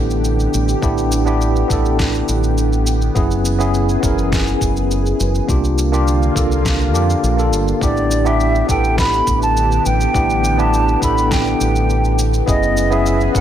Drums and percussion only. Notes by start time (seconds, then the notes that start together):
0.11 shaker
0.25 shaker
0.40 shaker
0.54 shaker
0.68 shaker
0.82 kick, shaker
0.98 shaker
1.12 shaker
1.27 shaker
1.41 shaker
1.56 shaker
1.70 kick, shaker
1.85 shaker
1.99 kick, snare, shaker
2.14 shaker
2.29 shaker
2.44 shaker
2.58 shaker
2.73 shaker
2.87 shaker
3.02 shaker
3.16 kick, shaker
3.31 shaker
3.45 shaker
3.60 shaker
3.74 shaker
3.89 shaker
4.03 kick, shaker
4.18 shaker
4.32 kick, snare, shaker
4.47 shaker
4.61 kick, shaker
4.77 shaker
4.91 shaker
5.06 shaker
5.20 shaker
5.35 shaker
5.49 kick, shaker
5.64 shaker
5.78 shaker
5.94 shaker
6.08 shaker
6.23 shaker
6.36 kick, shaker
6.52 shaker
6.65 kick, snare, shaker
6.81 shaker
6.95 shaker
7.10 shaker
7.24 shaker
7.39 shaker
7.53 shaker
7.68 shaker
7.81 kick, shaker
7.97 shaker
8.11 shaker
8.26 shaker
8.40 shaker
8.55 shaker
8.69 kick, shaker
8.84 shaker
8.98 kick, snare, shaker
9.13 shaker
9.27 kick, shaker
9.42 shaker
9.57 shaker
9.72 shaker
9.86 shaker
10.01 shaker
10.14 kick, shaker
10.30 shaker
10.44 shaker
10.59 shaker
10.74 shaker
10.88 shaker
11.02 kick, shaker
11.18 shaker
11.31 kick, snare, shaker
11.47 shaker
11.61 shaker
11.76 shaker
11.90 shaker
12.05 shaker
12.19 shaker
12.34 shaker
12.48 kick, shaker
12.63 shaker
12.77 shaker
12.92 shaker
13.06 shaker
13.21 shaker
13.35 kick, shaker